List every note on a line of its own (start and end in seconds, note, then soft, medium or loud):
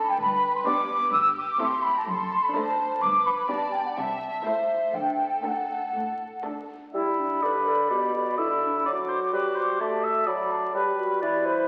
0.00 0.20 A4 medium
0.08 0.20 G5 medium
0.19 0.57 G1 medium
0.19 0.57 G2 medium
0.19 1.11 B4 medium
0.19 0.54 B5 medium
0.55 0.60 C6 medium
0.66 1.01 B3 medium
0.66 1.01 D4 medium
0.66 1.01 G4 soft
0.66 1.01 D5 medium
0.66 1.12 D6 medium
1.12 1.50 G1 medium
1.12 1.50 G2 medium
1.12 2.07 G4 medium
1.12 1.35 E6 medium
1.36 1.59 D6 medium
1.59 1.95 A3 soft
1.59 1.95 C4 soft
1.59 1.95 E4 medium
1.59 1.95 A4 soft
1.59 1.83 C6 medium
1.82 1.95 B5 medium
1.95 2.07 A5 medium
2.07 2.44 F#1 medium
2.07 2.45 F#2 medium
2.07 2.54 A4 medium
2.07 2.42 C6 medium
2.42 2.54 B5 medium
2.53 2.89 A3 soft
2.53 2.89 D4 soft
2.53 2.89 A4 soft
2.53 3.01 C5 medium
2.53 2.89 D5 soft
2.53 3.01 A5 medium
3.00 3.38 G1 medium
3.00 3.39 G2 medium
3.00 3.48 B4 medium
3.00 3.24 D6 medium
3.24 3.48 B5 medium
3.49 3.84 B3 soft
3.49 3.85 D4 soft
3.49 3.85 G4 soft
3.49 3.84 D5 soft
3.49 3.97 D5 soft
3.49 3.72 A5 medium
3.72 3.84 G5 medium
3.84 3.96 F#5 soft
3.96 4.34 C2 soft
3.96 4.35 C3 soft
3.96 4.45 E5 soft
3.96 4.45 A5 medium
4.43 4.81 A3 soft
4.43 4.80 E4 soft
4.43 4.80 A4 soft
4.43 4.80 C5 soft
4.43 4.94 C5 soft
4.43 4.93 E5 soft
4.93 5.33 D2 soft
4.93 5.34 D3 soft
4.93 6.69 A4 soft
4.93 5.44 G5 soft
5.43 5.81 A3 soft
5.43 5.81 D4 soft
5.43 5.81 A4 soft
5.43 6.44 F#5 soft
5.95 6.34 A2 soft
6.44 6.82 A3 soft
6.44 6.82 D4 soft
6.44 6.82 A4 soft
6.94 7.39 G3 soft
6.94 7.21 E4 medium
6.94 7.44 E5 soft
6.94 8.34 B5 soft
7.19 7.46 D4 soft
7.42 7.89 D3 soft
7.42 7.69 B4 medium
7.42 7.89 D5 soft
7.68 7.94 A4 medium
7.90 8.37 B2 soft
7.90 8.14 G4 medium
7.90 8.39 D5 soft
8.15 8.38 F#4 soft
8.37 8.84 D3 soft
8.37 8.49 E4 medium
8.37 8.85 E5 soft
8.37 8.84 B5 soft
8.63 8.86 D4 soft
8.85 9.32 F#3 soft
8.85 10.48 F#4 medium
8.85 8.96 D5 soft
8.85 9.32 D6 soft
9.08 9.19 C5 soft
9.33 9.79 G3 soft
9.33 9.57 B4 soft
9.33 9.79 D6 soft
9.56 9.81 C5 soft
9.80 10.26 A3 soft
9.80 10.05 D5 soft
9.80 10.27 A5 soft
10.04 10.28 E5 soft
10.27 10.73 F#3 soft
10.27 10.74 D5 soft
10.27 10.51 B5 soft
10.51 10.74 A5 soft
10.74 11.20 G3 soft
10.74 10.85 G4 medium
10.74 11.21 B4 soft
10.74 11.20 B5 soft
10.98 11.21 F#4 medium
11.21 11.68 E3 soft
11.21 11.68 B4 soft
11.21 11.47 D5 medium
11.21 11.68 B5 soft
11.46 11.68 C5 medium